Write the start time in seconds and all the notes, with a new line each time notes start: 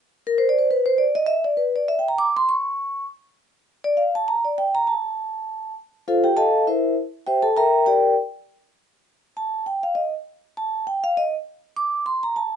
0.27 A#4
0.38 C5
0.49 D5
0.58 C5
0.71 B4
0.86 C5
0.98 D5
1.15 D#5
1.26 E5
1.44 D5
1.57 B4
1.76 D5
1.88 E5
1.99 G5
2.08 A#5
2.18 D6
2.37 C6
2.49 C#6
3.84 D5
3.97 F5
4.15 A5
4.28 A#5
4.45 D5
4.58 G5
4.75 A#5
4.87 A5
6.08 F4 A4 C5 F5
6.24 G4 G5
6.37 A4 D#5 F5 A5
6.67 E4 A#4 C5 E5
7.27 G4 C5 E5 G5
7.42 A4 A5
7.57 A#4 E5 G5 A#5
7.86 G4 A#4 D5 G5
9.37 A5
9.66 G5
9.83 F5
9.95 D#5
10.57 A5
10.87 G5
11.04 F5
11.17 D#5
11.76 D6
12.06 C6
12.23 A#5
12.36 A5